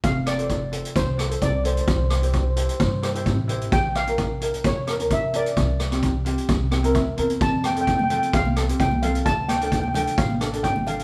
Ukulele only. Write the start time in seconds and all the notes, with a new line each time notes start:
0.38 F4 A4 C5
0.72 F4 A4 C5
1.18 F4 A4 C5
1.29 F4 A4 C5
1.63 F4 A4 C5
2.22 E4 G4 C5
2.56 E4 G4 C5
3.02 E4 G4 C5
3.14 E4 G4 C5
3.48 E4 G4 C5
4.07 C#4 F4 A#4
4.40 C#4 F4 A#4
4.87 C#4 F4 A#4
4.99 C#4 F4 A#4
5.33 C#4 F4 A#4
5.91 C4 F4 G4
6.25 C4 F4 G4
6.71 C4 E4 G4 G5
6.83 C4 E4 A#4
6.95 E5
7.16 C4 E4 A#4 C5
7.75 C4 F4 A4
8.10 C4 F4 A4
8.56 C4 F4 A4
8.68 C4 F4 G4
9.02 C4 F4 A4
9.60 D4 F4 A4
9.94 D4 F4 A4
10.40 D4 F4 A4
10.53 D4 F4 A4
10.86 D4 F4 A4